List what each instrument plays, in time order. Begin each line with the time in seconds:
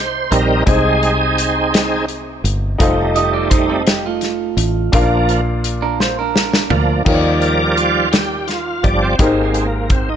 Already playing: fingered electric bass C2, upright piano C3 C4 D#4 G4 C5 D#5 G5, tonewheel organ C5
0.31 fingered electric bass A#1, tonewheel organ G3 C4 D#4 A#4, closed hi-hat
0.66 fingered electric bass C2, upright piano C3 C4 D#4 G#4 C5 D#5, tonewheel organ G#3 C4 D#4 G#4, kick, closed hi-hat
1.03 closed hi-hat
1.38 closed hi-hat
1.74 snare, closed hi-hat
2.08 closed hi-hat
2.44 fingered electric bass G1, closed hi-hat
2.78 fingered electric bass F1, tonewheel organ G3 A3 D#4, upright piano D#4 F4 A4 C5 D#5, kick, closed hi-hat
3.16 clean electric guitar G4 D#5, closed hi-hat
3.34 clean electric guitar F4 D5
3.50 clean electric guitar D#4 C5, kick, closed hi-hat
3.69 clean electric guitar C4 A4
3.87 clean electric guitar G4, snare, closed hi-hat
4.06 clean electric guitar A3 F4
4.21 snare, closed hi-hat
4.57 fingered electric bass A1, closed hi-hat
4.92 fingered electric bass A#1, upright piano A#2 D4 F4 A#4 D5 F5, tonewheel organ F3 A#3 D4, kick, closed hi-hat
5.29 closed hi-hat
5.64 closed hi-hat
5.82 clean electric guitar D4 A#4
6.00 clean electric guitar C5, snare
6.19 clean electric guitar D4 A#4
6.36 snare
6.53 snare
6.70 fingered electric bass D2, tonewheel organ F3 A#3 D4, floor tom
7.05 fingered electric bass D#2, upright piano D#3 D#4 F4 G4 A#4 C#5, tonewheel organ F3 G3 D5, kick, crash
7.15 upright piano D5
7.41 tonewheel organ A#4, closed hi-hat
7.76 tonewheel organ F4, closed hi-hat
8.12 tonewheel organ G4, snare, closed hi-hat
8.47 tonewheel organ F4, snare, closed hi-hat
8.83 fingered electric bass G1, tonewheel organ F3 G3 D#4 D5, kick, closed hi-hat
8.94 tonewheel organ D4
9.02 tonewheel organ C4
9.19 fingered electric bass G#1, upright piano G#2 D#4 G4 G#4 A#4 C5, tonewheel organ G#3 A#3 C4, kick, closed hi-hat
9.54 tonewheel organ A#3, closed hi-hat
9.90 tonewheel organ C4, kick, closed hi-hat
10.09 tonewheel organ D#4